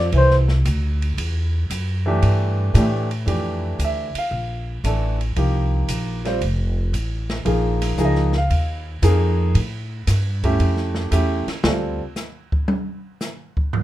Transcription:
Already playing: upright bass F2, grand piano G3 C4 F4 A4, flugelhorn D5
0.12 upright bass C2, trombone E3, kick, ride
0.17 flugelhorn C5
0.31 snare
0.48 snare
0.65 upright bass D2, kick, hi-hat pedal, ride
1.02 ride
1.17 upright bass E2, kick, ride
1.70 upright bass F#2, kick, hi-hat pedal, ride
2.06 grand piano E3 A3 D4 G4
2.22 upright bass G2, kick, ride
2.74 upright bass A2, grand piano E3 A3 D4 G4, kick, hi-hat pedal, ride
3.11 ride
3.26 upright bass F2, grand piano E3 A3 D4 G4, kick, ride
3.79 upright bass D2, kick, hi-hat pedal, ride
3.85 grand piano E5
4.15 grand piano F5, muted upright bass stroke, ride
4.31 upright bass A#1, kick
4.84 upright bass A1, grand piano E3 A3 D4 A4, kick, hi-hat pedal, ride
5.21 ride
5.36 upright bass C2, grand piano F3 A#3 D#4 G4, kick, ride
5.88 upright bass A#1, kick, hi-hat pedal, ride
6.25 grand piano G3 C4 F4 C5, snare, ride
6.41 upright bass F1, kick, ride
6.93 upright bass A1, kick, hi-hat pedal, ride
7.30 snare, ride
7.45 upright bass A#1, grand piano F3 A#3 D#4 G#4, kick, ride
7.82 snare, ride
7.98 upright bass C#2, grand piano F3 A#3 D#4 G#4, kick, hi-hat pedal
8.05 grand piano D#5
8.15 snare
8.33 snare
8.38 grand piano F5
8.50 upright bass D#2, kick, ride
9.02 upright bass F2, grand piano F3 A#3 D#4 G#4, kick, hi-hat pedal, ride
9.55 upright bass A2, ride
10.07 upright bass G2, kick, snare, hi-hat pedal, ride
10.44 grand piano A3 C#4 E4 G4, kick, ride
10.59 upright bass F2, ride
10.77 snare
10.95 snare
11.11 upright bass E2, grand piano A3 C#4 E4 G4, kick, hi-hat pedal, ride
11.47 muted upright bass stroke, snare, ride
11.63 upright bass D2, grand piano G3 C4 F4 A4, snare
12.16 snare, hi-hat pedal
12.52 kick
12.68 high tom
13.21 snare, hi-hat pedal
13.57 kick
13.73 floor tom

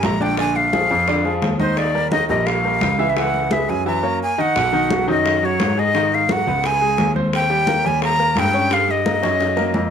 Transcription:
Already playing: grand piano G3 G4 A#4
0.03 grand piano A#1, flute A#5, high bongo, low bongo, high conga
0.21 grand piano D3 D4 D5, flute G5, high bongo, high conga
0.37 grand piano D3 D4 D5, flute G#5, high bongo, high conga
0.56 flute F5, high bongo, high conga
0.73 grand piano F3 F4 G#4, high bongo, high conga
0.91 grand piano F2, high bongo
1.08 grand piano D3 D4 D5, high bongo, high conga
1.25 grand piano F3 F4 G#4, high bongo, high conga
1.42 grand piano D#2, high bongo, low bongo, high conga
1.59 grand piano D#3 D#4 D#5, flute C5, high conga
1.77 flute D5, high bongo, high conga
1.95 grand piano G3 G4 A#4, high conga
2.11 grand piano D#3 D#4 D#5, flute D#5, high bongo, high conga
2.29 grand piano A#1 G3 G4 A#4, flute D#5, high bongo, high conga
2.46 flute F5, high bongo, high conga
2.64 grand piano G3 G4 A#4, high bongo, high conga
2.81 grand piano C#2, high bongo, low bongo, high conga
2.99 grand piano E3 E4 E5, high bongo
3.10 flute E5
3.16 grand piano E3 E4 E5, flute F#5, high bongo, high conga
3.34 high bongo, high conga
3.51 grand piano G#3 G#4 B4, flute E5, high bongo, high conga
3.69 grand piano F#2, flute G#5, high bongo
3.86 grand piano E3 E4 E5, flute A#5
4.03 grand piano A#3 A#4 C#5
4.23 flute G#5
4.38 grand piano D#3 D#4 D#5, flute F#5
4.56 grand piano B1, high bongo, high conga
4.73 grand piano D#3 D#4, high conga
4.90 grand piano F#3 F#4, high bongo, high conga
5.07 grand piano F#2 D#3 D#4, flute D#5, high bongo, high conga
5.26 high bongo, high conga
5.43 grand piano F#3 F#4, flute C#5, high bongo, high conga
5.60 grand piano G#2, high bongo, low bongo, high conga
5.77 grand piano G#3 G#4, flute D#5, high bongo
5.94 grand piano D#3 D#4, high bongo, high conga
6.12 flute F5, high bongo, high conga
6.29 grand piano F#3 F#4, flute F#5, high bongo, high conga
6.46 grand piano C#2 B3 B4, high bongo
6.64 flute G#5, high bongo, high conga
6.81 grand piano G#3 G#4, high bongo, high conga
6.98 grand piano D#2, high bongo, low bongo, high conga
7.16 grand piano C4 C5, high conga
7.33 flute G5, high bongo, high conga
7.50 grand piano G3 G4, high conga
7.67 grand piano A#3 A#4, high bongo, high conga
7.84 grand piano D#2 G3 G4, flute G#5, high bongo, high conga
8.02 flute A#5, high bongo, high conga
8.19 grand piano A#3 A#4, high bongo, high conga
8.36 grand piano G2, flute G5, high bongo, low bongo, high conga
8.54 grand piano C#4 C#5, high bongo
8.71 grand piano G3 G4, flute F5, high bongo, high conga
8.88 flute D#5, high bongo, high conga
9.06 grand piano A#3 A#4, high bongo, high conga
9.22 grand piano F#2 C#4 C#5, high bongo
9.40 high bongo, high conga
9.56 grand piano A#3 A#4, low bongo, high conga
9.74 grand piano F2, low bongo, high conga

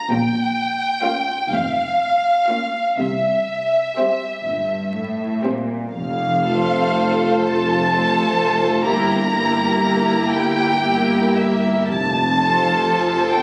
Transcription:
Already playing: violin section A#5
0.11 double bass section A#1, cello section A#2, violin section G5
1.03 viola section A#3 C#4, violin section F4 F5
1.51 double bass section F1, cello section F2, violin section F5
2.48 viola section A#3 C#4, violin section F4 F5
2.99 double bass section C2, cello section C3, violin section E5
3.98 viola section G3 C4, violin section G4 C5
4.46 double bass section G1, cello section G2
4.95 cello section A2
5.45 cello section A#2, viola section G3 C4, violin section G4 C5
5.94 double bass section F1, cello section F2, violin section F5
6.44 viola section A3 F4, violin section A4 C5
7.42 double bass section F1, cello section F2, violin section A5
7.90 viola section A3 F4, violin section A4 C5
8.84 double bass section G1, cello section G2, viola section A#3 E4, violin section G4 A#4 A#5
9.32 viola section A#3 E4, violin section G4 A#4
10.30 double bass section G1, cello section G2, violin section G5
10.81 viola section A#3 E4, violin section G4 A#4
11.35 violin section E5
11.87 double bass section F1, cello section F2, violin section A5
12.37 viola section F3 F4, violin section A4 C5
13.32 double bass section F1, cello section F2, violin section G5

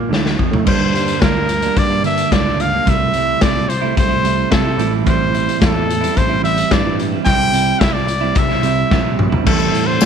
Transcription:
Already playing: clean electric guitar A#3
0.09 picked electric bass D2, clean electric guitar D3, snare
0.26 snare
0.39 picked electric bass F2, clean electric guitar F3, kick
0.51 picked electric bass A2, clean electric guitar A3, floor tom
0.65 clean electric guitar G2 D3 G3 A#3 D4, picked electric bass G2, trumpet C5, kick, crash
0.93 clean electric guitar D3 G3 A#3 D4, closed hi-hat
1.08 closed hi-hat
1.21 picked electric bass D2, clean electric guitar G2 D3 G3 A#3 D4, trumpet A#4, kick, snare, closed hi-hat
1.35 clean electric guitar G3 A#3 D4
1.49 muted clean electric guitar stroke, closed hi-hat
1.62 clean electric guitar G3 A#3 D4, closed hi-hat
1.76 picked electric bass G2, trumpet D5, kick, closed hi-hat
1.90 clean electric guitar G3 A#3 D4
2.03 clean electric guitar D3 G3 A#3 D4, trumpet E5, closed hi-hat
2.18 closed hi-hat
2.31 picked electric bass C#2, clean electric guitar G2 D3 G3 A#3 D4, trumpet D5, kick, snare, closed hi-hat
2.46 clean electric guitar G3 A#3 D4
2.60 trumpet F5, closed hi-hat
2.72 clean electric guitar G3 A#3 D4
2.85 picked electric bass C2, clean electric guitar C3 G3 A3 E4, kick, closed hi-hat
2.90 trumpet E5
3.13 clean electric guitar C3 G3 A3, closed hi-hat
3.18 clean electric guitar E4
3.41 picked electric bass C2, clean electric guitar C3 G3 A3 E4, trumpet D5, kick, snare, closed hi-hat
3.55 clean electric guitar G3 A3 E4
3.68 picked electric bass C2, trumpet C5, muted clean electric guitar stroke, closed hi-hat
3.82 clean electric guitar G3 A3 E4
3.97 picked electric bass C2, trumpet C5, kick, closed hi-hat
4.09 clean electric guitar G3 A3 E4
4.22 clean electric guitar C3 G3 A3 E4, closed hi-hat
4.49 clean electric guitar C3 G3 A3 E4, picked electric bass C3, trumpet A4, kick, snare, closed hi-hat
4.63 clean electric guitar G3 A3 E4
4.77 picked electric bass A1, clean electric guitar A2 E3 G3 C4 E4, closed hi-hat
4.90 clean electric guitar G3 C4 E4
5.04 clean electric guitar A2 E3 G3 C4 E4, kick, closed hi-hat
5.09 trumpet C5
5.31 clean electric guitar E3 G3 C4 E4, closed hi-hat
5.49 closed hi-hat
5.59 picked electric bass E2, clean electric guitar A2 E3 G3 C4 E4, kick, snare, closed hi-hat
5.65 trumpet A4
5.74 clean electric guitar G3 C4 E4
5.88 muted clean electric guitar stroke, closed hi-hat
6.01 clean electric guitar G3 C4 E4, closed hi-hat
6.16 picked electric bass A1, trumpet C5, kick, closed hi-hat
6.29 clean electric guitar G3 C4 E4
6.42 clean electric guitar E3 G3 C4 E4, trumpet E5, closed hi-hat
6.58 closed hi-hat
6.70 picked electric bass G2, clean electric guitar A2 E3 G3 C4 E4, trumpet D5, kick, snare, closed hi-hat
6.84 clean electric guitar G3 C4 E4
6.99 closed hi-hat
7.12 clean electric guitar G3 C4 E4
7.25 picked electric bass C2, clean electric guitar C3 G3 C4 E4, trumpet G5, kick, closed hi-hat
7.52 clean electric guitar C3 G3 C4 E4, closed hi-hat
7.80 picked electric bass C2, clean electric guitar C3 G3 C4 E4, trumpet E5, kick, snare, closed hi-hat
7.93 clean electric guitar G3 C4 E4, trumpet D5
8.07 picked electric bass C2, closed hi-hat
8.21 clean electric guitar C4 E4
8.25 clean electric guitar G3
8.35 picked electric bass C2, trumpet E5, kick, closed hi-hat
8.49 clean electric guitar G3 C4 E4, snare
8.62 clean electric guitar C3 G3 C4 E4, closed hi-hat
8.90 picked electric bass A#1, clean electric guitar C3 G3 C4 E4, kick, snare
9.03 clean electric guitar G3 C4 E4
9.19 mid tom
9.30 clean electric guitar G3 C4 E4, floor tom
9.44 picked electric bass A1, clean electric guitar A2 E3 G3 C4 E4, trumpet A4, kick, crash
9.60 tambourine
9.73 picked electric bass A2, closed hi-hat
9.87 clean electric guitar G3 C4 E4, trumpet C5
10.00 clean electric guitar A2 E3, snare, closed hi-hat, tambourine

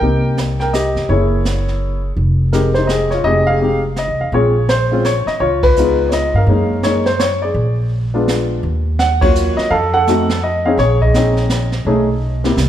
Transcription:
Already playing: grand piano A#4 G5
0.01 upright bass C2, grand piano A#3 C4 D#4 G4, brush sweep
0.37 snare, hi-hat pedal
0.60 grand piano A#4 G5, snare
0.73 grand piano G4 D#5, snare, hi-hat pedal
0.95 upright bass F1, snare
1.09 upright bass F#1, grand piano A#3 C#4 E4 G#4 C#5, brush sweep
1.45 snare, hi-hat pedal
1.68 snare
2.17 upright bass F1, brush sweep
2.53 grand piano G#3 C4 D#4 G4 A#4, snare, hi-hat pedal
2.74 grand piano D#4 C5, snare
2.87 grand piano G#4 D#5, snare, hi-hat pedal
3.10 grand piano F4 C#5, snare
3.24 upright bass F1, grand piano G#3 C4 D#4 G4 G#4 D#5, brush sweep
3.47 grand piano G#4 F5
3.61 grand piano G#3 C4 D#4 G4
3.96 grand piano D#5, snare, hi-hat pedal
4.08 upright bass C2
4.20 upright bass F2, grand piano F5
4.32 upright bass A#1, grand piano G#3 C4 C#4 F4 G#4 C#5, brush sweep
4.69 grand piano C5, snare, hi-hat pedal
4.91 grand piano G#3 C4 C#4 F4
5.05 grand piano C#5, snare, hi-hat pedal
5.26 grand piano D#5, muted upright bass stroke, snare
5.40 upright bass C#2, grand piano F4 C#5, brush sweep
5.63 grand piano B4, kick, ride
5.76 grand piano G#3 B3 D#4 F4, hi-hat pedal
6.09 grand piano C#5, snare, hi-hat pedal
6.13 grand piano D#5
6.34 upright bass G2, grand piano A#4 F5
6.47 upright bass F#2, grand piano G#3 A#3 C#4 D#4, brush sweep
6.83 grand piano G#3 A#3 C#4 D#4 C#5, snare, hi-hat pedal
7.06 grand piano C5, snare
7.19 grand piano C#5, snare, hi-hat pedal
7.42 grand piano G#4 D5
7.54 upright bass A#1, brush sweep
8.14 grand piano G#3 B3 D4 F4
8.28 snare, hi-hat pedal
8.63 upright bass D#2, brush sweep
8.99 grand piano F#5, snare, hi-hat pedal
9.21 grand piano F#3 A#3 C#4 F4 C#5, kick, ride
9.35 hi-hat pedal
9.57 grand piano D#5, muted upright bass stroke, snare
9.71 upright bass F2, grand piano A4 F5, brush sweep
9.94 grand piano A4 F#5
10.07 grand piano A3 C4 D#4 F#4, snare, hi-hat pedal
10.30 snare
10.43 grand piano D#5
10.66 grand piano C4 C#4 D#4 G#4 F5
10.78 upright bass A#1, grand piano G#4 C#5, brush sweep, snare
11.01 grand piano G#4 D#5, kick
11.14 grand piano C4 C#4 D#4 G#4, snare, hi-hat pedal
11.36 snare
11.50 snare, hi-hat pedal
11.72 snare
11.85 upright bass B1, grand piano A3 C#4 D#4 G#4, brush sweep
12.44 grand piano A#3 C4 E4 G4, snare
12.57 upright bass C2, snare, hi-hat pedal

